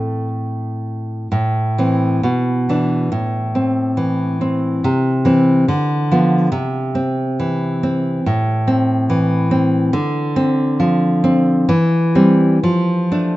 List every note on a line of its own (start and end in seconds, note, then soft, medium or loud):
0.00 1.26 A2 soft
0.00 1.27 A3 soft
0.00 1.28 C4 soft
0.00 0.28 A4 soft
1.32 2.21 A2 medium
1.78 2.20 E3 soft
1.78 2.21 C4 soft
2.23 3.10 B2 soft
2.69 3.09 E3 soft
2.69 3.09 D4 soft
3.12 4.79 A2 medium
3.55 4.40 C4 soft
3.97 4.83 E3 soft
4.41 4.84 C4 soft
4.84 5.67 C3 medium
5.25 5.64 E3 soft
5.25 5.65 C4 soft
5.68 6.49 D3 medium
6.12 6.48 F3 soft
6.12 6.49 B3 soft
6.52 8.19 C3 medium
6.95 7.82 C4 soft
7.40 8.24 E3 soft
7.83 8.24 C4 medium
8.26 9.90 A2 medium
8.67 9.50 C4 medium
9.10 9.93 E3 medium
9.51 9.93 C4 medium
9.93 11.65 D3 medium
10.36 11.23 C4 medium
10.80 11.69 F3 medium
11.24 11.69 C4 medium
11.69 12.58 E3 medium
12.15 12.58 G3 soft
12.15 12.58 C4 medium
12.63 13.37 F3 medium
13.11 13.37 A3 soft
13.11 13.37 D4 soft